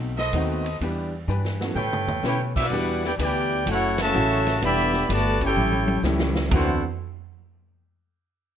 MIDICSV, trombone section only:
0, 0, Header, 1, 2, 480
1, 0, Start_track
1, 0, Key_signature, 2, "major"
1, 0, Tempo, 475813
1, 813, Time_signature, 4, 2, 24, 8
1, 8638, End_track
2, 0, Start_track
2, 0, Title_t, "Trombone section"
2, 0, Program_c, 0, 61
2, 2253, Note_on_c, 0, 61, 68
2, 2254, Note_on_c, 0, 64, 65
2, 2254, Note_on_c, 0, 67, 70
2, 2399, Note_off_c, 0, 61, 0
2, 2400, Note_off_c, 0, 64, 0
2, 2400, Note_off_c, 0, 67, 0
2, 2576, Note_on_c, 0, 59, 65
2, 2577, Note_on_c, 0, 62, 66
2, 2577, Note_on_c, 0, 66, 70
2, 3025, Note_off_c, 0, 59, 0
2, 3025, Note_off_c, 0, 62, 0
2, 3026, Note_off_c, 0, 66, 0
2, 3058, Note_on_c, 0, 59, 80
2, 3058, Note_on_c, 0, 62, 81
2, 3061, Note_on_c, 0, 67, 80
2, 3129, Note_off_c, 0, 59, 0
2, 3129, Note_off_c, 0, 62, 0
2, 3132, Note_off_c, 0, 67, 0
2, 3226, Note_on_c, 0, 59, 87
2, 3230, Note_on_c, 0, 62, 82
2, 3234, Note_on_c, 0, 67, 86
2, 3669, Note_off_c, 0, 59, 0
2, 3671, Note_off_c, 0, 62, 0
2, 3673, Note_off_c, 0, 67, 0
2, 3699, Note_on_c, 0, 61, 79
2, 3704, Note_on_c, 0, 66, 79
2, 3707, Note_on_c, 0, 57, 81
2, 3999, Note_off_c, 0, 61, 0
2, 4002, Note_off_c, 0, 66, 0
2, 4004, Note_off_c, 0, 57, 0
2, 4032, Note_on_c, 0, 52, 99
2, 4034, Note_on_c, 0, 49, 100
2, 4037, Note_on_c, 0, 57, 94
2, 4623, Note_off_c, 0, 52, 0
2, 4624, Note_off_c, 0, 49, 0
2, 4626, Note_off_c, 0, 57, 0
2, 4673, Note_on_c, 0, 50, 102
2, 4673, Note_on_c, 0, 59, 97
2, 4678, Note_on_c, 0, 55, 106
2, 5112, Note_off_c, 0, 50, 0
2, 5112, Note_off_c, 0, 59, 0
2, 5115, Note_off_c, 0, 55, 0
2, 5144, Note_on_c, 0, 57, 90
2, 5464, Note_off_c, 0, 57, 0
2, 5465, Note_on_c, 0, 64, 80
2, 5468, Note_on_c, 0, 61, 79
2, 5472, Note_on_c, 0, 67, 83
2, 6059, Note_off_c, 0, 64, 0
2, 6060, Note_off_c, 0, 61, 0
2, 6062, Note_off_c, 0, 67, 0
2, 6571, Note_on_c, 0, 57, 93
2, 6572, Note_on_c, 0, 50, 92
2, 6572, Note_on_c, 0, 60, 95
2, 6572, Note_on_c, 0, 66, 96
2, 6873, Note_off_c, 0, 57, 0
2, 6874, Note_off_c, 0, 50, 0
2, 6874, Note_off_c, 0, 60, 0
2, 6874, Note_off_c, 0, 66, 0
2, 8638, End_track
0, 0, End_of_file